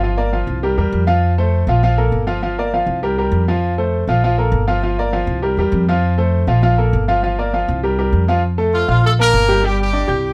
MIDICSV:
0, 0, Header, 1, 4, 480
1, 0, Start_track
1, 0, Key_signature, -1, "major"
1, 0, Tempo, 300451
1, 27, Time_signature, 4, 2, 24, 8
1, 16505, End_track
2, 0, Start_track
2, 0, Title_t, "Grand piano"
2, 0, Program_c, 0, 0
2, 53, Note_on_c, 0, 53, 79
2, 56, Note_on_c, 0, 65, 82
2, 63, Note_on_c, 0, 77, 76
2, 239, Note_off_c, 0, 53, 0
2, 241, Note_off_c, 0, 65, 0
2, 245, Note_off_c, 0, 77, 0
2, 277, Note_on_c, 0, 58, 80
2, 282, Note_on_c, 0, 70, 73
2, 282, Note_on_c, 0, 74, 79
2, 470, Note_off_c, 0, 58, 0
2, 473, Note_off_c, 0, 70, 0
2, 473, Note_off_c, 0, 74, 0
2, 521, Note_on_c, 0, 53, 76
2, 523, Note_on_c, 0, 65, 75
2, 531, Note_on_c, 0, 77, 78
2, 910, Note_off_c, 0, 53, 0
2, 910, Note_off_c, 0, 65, 0
2, 915, Note_off_c, 0, 77, 0
2, 1006, Note_on_c, 0, 55, 83
2, 1012, Note_on_c, 0, 67, 82
2, 1023, Note_on_c, 0, 70, 77
2, 1196, Note_off_c, 0, 55, 0
2, 1199, Note_off_c, 0, 67, 0
2, 1205, Note_off_c, 0, 70, 0
2, 1242, Note_on_c, 0, 55, 81
2, 1242, Note_on_c, 0, 67, 78
2, 1248, Note_on_c, 0, 70, 79
2, 1630, Note_off_c, 0, 55, 0
2, 1631, Note_off_c, 0, 67, 0
2, 1634, Note_off_c, 0, 70, 0
2, 1710, Note_on_c, 0, 65, 95
2, 1716, Note_on_c, 0, 53, 86
2, 1716, Note_on_c, 0, 77, 100
2, 2103, Note_off_c, 0, 65, 0
2, 2107, Note_off_c, 0, 53, 0
2, 2107, Note_off_c, 0, 77, 0
2, 2206, Note_on_c, 0, 57, 80
2, 2210, Note_on_c, 0, 69, 86
2, 2213, Note_on_c, 0, 72, 81
2, 2593, Note_off_c, 0, 57, 0
2, 2596, Note_off_c, 0, 69, 0
2, 2597, Note_off_c, 0, 72, 0
2, 2687, Note_on_c, 0, 53, 81
2, 2699, Note_on_c, 0, 65, 94
2, 2703, Note_on_c, 0, 77, 82
2, 2877, Note_off_c, 0, 53, 0
2, 2884, Note_off_c, 0, 65, 0
2, 2886, Note_off_c, 0, 77, 0
2, 2924, Note_on_c, 0, 53, 93
2, 2928, Note_on_c, 0, 65, 92
2, 2936, Note_on_c, 0, 77, 98
2, 3115, Note_off_c, 0, 53, 0
2, 3118, Note_off_c, 0, 65, 0
2, 3122, Note_off_c, 0, 77, 0
2, 3158, Note_on_c, 0, 58, 76
2, 3158, Note_on_c, 0, 69, 85
2, 3166, Note_on_c, 0, 70, 76
2, 3549, Note_off_c, 0, 58, 0
2, 3549, Note_off_c, 0, 69, 0
2, 3553, Note_off_c, 0, 70, 0
2, 3624, Note_on_c, 0, 53, 87
2, 3629, Note_on_c, 0, 65, 90
2, 3633, Note_on_c, 0, 77, 88
2, 3823, Note_off_c, 0, 53, 0
2, 3827, Note_off_c, 0, 65, 0
2, 3829, Note_off_c, 0, 77, 0
2, 3875, Note_on_c, 0, 53, 81
2, 3881, Note_on_c, 0, 65, 79
2, 3884, Note_on_c, 0, 77, 78
2, 4070, Note_off_c, 0, 53, 0
2, 4074, Note_off_c, 0, 65, 0
2, 4076, Note_off_c, 0, 77, 0
2, 4129, Note_on_c, 0, 70, 81
2, 4131, Note_on_c, 0, 58, 78
2, 4139, Note_on_c, 0, 74, 80
2, 4319, Note_off_c, 0, 70, 0
2, 4320, Note_off_c, 0, 58, 0
2, 4325, Note_off_c, 0, 74, 0
2, 4371, Note_on_c, 0, 53, 77
2, 4372, Note_on_c, 0, 65, 78
2, 4379, Note_on_c, 0, 77, 83
2, 4756, Note_off_c, 0, 53, 0
2, 4757, Note_off_c, 0, 65, 0
2, 4761, Note_off_c, 0, 77, 0
2, 4836, Note_on_c, 0, 55, 74
2, 4841, Note_on_c, 0, 67, 80
2, 4848, Note_on_c, 0, 70, 82
2, 5031, Note_off_c, 0, 55, 0
2, 5034, Note_off_c, 0, 67, 0
2, 5038, Note_off_c, 0, 70, 0
2, 5078, Note_on_c, 0, 55, 75
2, 5085, Note_on_c, 0, 67, 80
2, 5091, Note_on_c, 0, 70, 79
2, 5469, Note_off_c, 0, 55, 0
2, 5473, Note_off_c, 0, 67, 0
2, 5477, Note_off_c, 0, 70, 0
2, 5561, Note_on_c, 0, 65, 82
2, 5563, Note_on_c, 0, 53, 92
2, 5568, Note_on_c, 0, 77, 87
2, 5951, Note_off_c, 0, 65, 0
2, 5952, Note_off_c, 0, 53, 0
2, 5955, Note_off_c, 0, 77, 0
2, 6041, Note_on_c, 0, 57, 74
2, 6041, Note_on_c, 0, 69, 72
2, 6044, Note_on_c, 0, 72, 76
2, 6431, Note_off_c, 0, 57, 0
2, 6431, Note_off_c, 0, 69, 0
2, 6433, Note_off_c, 0, 72, 0
2, 6527, Note_on_c, 0, 53, 90
2, 6529, Note_on_c, 0, 65, 86
2, 6538, Note_on_c, 0, 77, 85
2, 6718, Note_off_c, 0, 53, 0
2, 6719, Note_off_c, 0, 65, 0
2, 6724, Note_off_c, 0, 77, 0
2, 6770, Note_on_c, 0, 53, 89
2, 6776, Note_on_c, 0, 77, 84
2, 6777, Note_on_c, 0, 65, 91
2, 6960, Note_off_c, 0, 53, 0
2, 6963, Note_off_c, 0, 77, 0
2, 6964, Note_off_c, 0, 65, 0
2, 6997, Note_on_c, 0, 58, 75
2, 6998, Note_on_c, 0, 69, 81
2, 7013, Note_on_c, 0, 70, 81
2, 7389, Note_off_c, 0, 58, 0
2, 7390, Note_off_c, 0, 69, 0
2, 7398, Note_off_c, 0, 70, 0
2, 7470, Note_on_c, 0, 53, 90
2, 7470, Note_on_c, 0, 65, 93
2, 7480, Note_on_c, 0, 77, 91
2, 7668, Note_off_c, 0, 53, 0
2, 7668, Note_off_c, 0, 65, 0
2, 7674, Note_off_c, 0, 77, 0
2, 7718, Note_on_c, 0, 53, 85
2, 7723, Note_on_c, 0, 77, 81
2, 7725, Note_on_c, 0, 65, 84
2, 7913, Note_off_c, 0, 53, 0
2, 7915, Note_off_c, 0, 77, 0
2, 7917, Note_off_c, 0, 65, 0
2, 7960, Note_on_c, 0, 58, 79
2, 7970, Note_on_c, 0, 70, 71
2, 7974, Note_on_c, 0, 74, 80
2, 8154, Note_off_c, 0, 58, 0
2, 8160, Note_off_c, 0, 70, 0
2, 8162, Note_off_c, 0, 74, 0
2, 8192, Note_on_c, 0, 53, 87
2, 8196, Note_on_c, 0, 65, 81
2, 8197, Note_on_c, 0, 77, 83
2, 8586, Note_off_c, 0, 53, 0
2, 8588, Note_off_c, 0, 65, 0
2, 8589, Note_off_c, 0, 77, 0
2, 8665, Note_on_c, 0, 67, 77
2, 8667, Note_on_c, 0, 55, 72
2, 8672, Note_on_c, 0, 70, 75
2, 8865, Note_off_c, 0, 67, 0
2, 8866, Note_off_c, 0, 55, 0
2, 8869, Note_off_c, 0, 70, 0
2, 8924, Note_on_c, 0, 67, 82
2, 8926, Note_on_c, 0, 55, 85
2, 8936, Note_on_c, 0, 70, 74
2, 9313, Note_off_c, 0, 67, 0
2, 9314, Note_off_c, 0, 55, 0
2, 9320, Note_off_c, 0, 70, 0
2, 9402, Note_on_c, 0, 53, 100
2, 9403, Note_on_c, 0, 65, 88
2, 9412, Note_on_c, 0, 77, 95
2, 9792, Note_off_c, 0, 53, 0
2, 9792, Note_off_c, 0, 65, 0
2, 9798, Note_off_c, 0, 77, 0
2, 9868, Note_on_c, 0, 57, 83
2, 9880, Note_on_c, 0, 69, 79
2, 9883, Note_on_c, 0, 72, 77
2, 10264, Note_off_c, 0, 57, 0
2, 10270, Note_off_c, 0, 69, 0
2, 10273, Note_off_c, 0, 72, 0
2, 10346, Note_on_c, 0, 53, 89
2, 10352, Note_on_c, 0, 65, 92
2, 10353, Note_on_c, 0, 77, 81
2, 10546, Note_off_c, 0, 53, 0
2, 10549, Note_off_c, 0, 65, 0
2, 10550, Note_off_c, 0, 77, 0
2, 10586, Note_on_c, 0, 53, 92
2, 10593, Note_on_c, 0, 65, 95
2, 10595, Note_on_c, 0, 77, 92
2, 10786, Note_off_c, 0, 53, 0
2, 10789, Note_off_c, 0, 65, 0
2, 10791, Note_off_c, 0, 77, 0
2, 10829, Note_on_c, 0, 58, 78
2, 10834, Note_on_c, 0, 69, 80
2, 10835, Note_on_c, 0, 70, 79
2, 11224, Note_off_c, 0, 58, 0
2, 11227, Note_off_c, 0, 69, 0
2, 11228, Note_off_c, 0, 70, 0
2, 11312, Note_on_c, 0, 53, 88
2, 11316, Note_on_c, 0, 65, 95
2, 11320, Note_on_c, 0, 77, 94
2, 11509, Note_off_c, 0, 53, 0
2, 11511, Note_off_c, 0, 65, 0
2, 11514, Note_off_c, 0, 77, 0
2, 11546, Note_on_c, 0, 53, 81
2, 11561, Note_on_c, 0, 65, 86
2, 11561, Note_on_c, 0, 77, 86
2, 11746, Note_off_c, 0, 53, 0
2, 11754, Note_off_c, 0, 65, 0
2, 11754, Note_off_c, 0, 77, 0
2, 11799, Note_on_c, 0, 58, 79
2, 11799, Note_on_c, 0, 70, 74
2, 11808, Note_on_c, 0, 74, 77
2, 11993, Note_off_c, 0, 58, 0
2, 11993, Note_off_c, 0, 70, 0
2, 11998, Note_off_c, 0, 74, 0
2, 12036, Note_on_c, 0, 53, 78
2, 12040, Note_on_c, 0, 65, 80
2, 12048, Note_on_c, 0, 77, 80
2, 12428, Note_off_c, 0, 53, 0
2, 12430, Note_off_c, 0, 65, 0
2, 12435, Note_off_c, 0, 77, 0
2, 12513, Note_on_c, 0, 55, 77
2, 12520, Note_on_c, 0, 67, 79
2, 12528, Note_on_c, 0, 70, 76
2, 12709, Note_off_c, 0, 55, 0
2, 12713, Note_off_c, 0, 67, 0
2, 12718, Note_off_c, 0, 70, 0
2, 12756, Note_on_c, 0, 55, 72
2, 12759, Note_on_c, 0, 67, 81
2, 12765, Note_on_c, 0, 70, 81
2, 13147, Note_off_c, 0, 55, 0
2, 13149, Note_off_c, 0, 67, 0
2, 13153, Note_off_c, 0, 70, 0
2, 13233, Note_on_c, 0, 53, 95
2, 13240, Note_on_c, 0, 65, 89
2, 13243, Note_on_c, 0, 77, 95
2, 13428, Note_off_c, 0, 53, 0
2, 13433, Note_off_c, 0, 65, 0
2, 13435, Note_off_c, 0, 77, 0
2, 13707, Note_on_c, 0, 69, 80
2, 13708, Note_on_c, 0, 57, 83
2, 13711, Note_on_c, 0, 81, 74
2, 14101, Note_off_c, 0, 69, 0
2, 14102, Note_off_c, 0, 57, 0
2, 14104, Note_off_c, 0, 81, 0
2, 14191, Note_on_c, 0, 65, 76
2, 14192, Note_on_c, 0, 77, 78
2, 14200, Note_on_c, 0, 89, 84
2, 14583, Note_off_c, 0, 65, 0
2, 14584, Note_off_c, 0, 77, 0
2, 14588, Note_off_c, 0, 89, 0
2, 14682, Note_on_c, 0, 58, 85
2, 14687, Note_on_c, 0, 70, 81
2, 14692, Note_on_c, 0, 81, 80
2, 15069, Note_off_c, 0, 58, 0
2, 15072, Note_off_c, 0, 70, 0
2, 15075, Note_off_c, 0, 81, 0
2, 15155, Note_on_c, 0, 67, 96
2, 15156, Note_on_c, 0, 55, 92
2, 15160, Note_on_c, 0, 79, 90
2, 15348, Note_off_c, 0, 67, 0
2, 15349, Note_off_c, 0, 55, 0
2, 15351, Note_off_c, 0, 79, 0
2, 15395, Note_on_c, 0, 55, 89
2, 15399, Note_on_c, 0, 67, 78
2, 15405, Note_on_c, 0, 79, 80
2, 15784, Note_off_c, 0, 55, 0
2, 15786, Note_off_c, 0, 67, 0
2, 15790, Note_off_c, 0, 79, 0
2, 15867, Note_on_c, 0, 62, 72
2, 15868, Note_on_c, 0, 74, 75
2, 15872, Note_on_c, 0, 86, 80
2, 16063, Note_off_c, 0, 62, 0
2, 16063, Note_off_c, 0, 74, 0
2, 16066, Note_off_c, 0, 86, 0
2, 16098, Note_on_c, 0, 67, 82
2, 16104, Note_on_c, 0, 79, 77
2, 16111, Note_on_c, 0, 91, 82
2, 16493, Note_off_c, 0, 67, 0
2, 16497, Note_off_c, 0, 79, 0
2, 16501, Note_off_c, 0, 91, 0
2, 16505, End_track
3, 0, Start_track
3, 0, Title_t, "Horn section"
3, 0, Program_c, 1, 61
3, 13962, Note_on_c, 1, 65, 95
3, 13980, Note_on_c, 1, 53, 75
3, 14179, Note_off_c, 1, 65, 0
3, 14188, Note_off_c, 1, 53, 0
3, 14216, Note_on_c, 1, 65, 91
3, 14219, Note_on_c, 1, 53, 74
3, 14426, Note_off_c, 1, 65, 0
3, 14428, Note_off_c, 1, 53, 0
3, 14452, Note_on_c, 1, 57, 87
3, 14458, Note_on_c, 1, 69, 106
3, 14555, Note_off_c, 1, 57, 0
3, 14559, Note_off_c, 1, 69, 0
3, 14707, Note_on_c, 1, 58, 89
3, 14714, Note_on_c, 1, 70, 119
3, 15357, Note_off_c, 1, 58, 0
3, 15361, Note_off_c, 1, 70, 0
3, 15406, Note_on_c, 1, 55, 78
3, 15417, Note_on_c, 1, 67, 102
3, 15636, Note_off_c, 1, 55, 0
3, 15641, Note_off_c, 1, 67, 0
3, 15654, Note_on_c, 1, 55, 73
3, 15673, Note_on_c, 1, 67, 92
3, 16505, Note_off_c, 1, 55, 0
3, 16505, Note_off_c, 1, 67, 0
3, 16505, End_track
4, 0, Start_track
4, 0, Title_t, "Upright bass"
4, 0, Program_c, 2, 32
4, 0, Note_on_c, 2, 31, 96
4, 663, Note_off_c, 2, 31, 0
4, 751, Note_on_c, 2, 36, 92
4, 1196, Note_off_c, 2, 36, 0
4, 1233, Note_on_c, 2, 40, 64
4, 1454, Note_off_c, 2, 40, 0
4, 1477, Note_on_c, 2, 41, 101
4, 2586, Note_off_c, 2, 41, 0
4, 2666, Note_on_c, 2, 34, 92
4, 3338, Note_off_c, 2, 34, 0
4, 3387, Note_on_c, 2, 31, 87
4, 4502, Note_off_c, 2, 31, 0
4, 4577, Note_on_c, 2, 36, 92
4, 5254, Note_off_c, 2, 36, 0
4, 5296, Note_on_c, 2, 41, 93
4, 6417, Note_off_c, 2, 41, 0
4, 6509, Note_on_c, 2, 34, 83
4, 7180, Note_off_c, 2, 34, 0
4, 7217, Note_on_c, 2, 31, 101
4, 8337, Note_off_c, 2, 31, 0
4, 8421, Note_on_c, 2, 36, 93
4, 8873, Note_off_c, 2, 36, 0
4, 8899, Note_on_c, 2, 40, 69
4, 9129, Note_off_c, 2, 40, 0
4, 9136, Note_on_c, 2, 41, 100
4, 10257, Note_off_c, 2, 41, 0
4, 10340, Note_on_c, 2, 34, 92
4, 11015, Note_off_c, 2, 34, 0
4, 11071, Note_on_c, 2, 31, 97
4, 12183, Note_off_c, 2, 31, 0
4, 12276, Note_on_c, 2, 36, 93
4, 12943, Note_off_c, 2, 36, 0
4, 12981, Note_on_c, 2, 41, 91
4, 14096, Note_off_c, 2, 41, 0
4, 14192, Note_on_c, 2, 34, 98
4, 14859, Note_off_c, 2, 34, 0
4, 14913, Note_on_c, 2, 31, 101
4, 16020, Note_off_c, 2, 31, 0
4, 16107, Note_on_c, 2, 36, 91
4, 16505, Note_off_c, 2, 36, 0
4, 16505, End_track
0, 0, End_of_file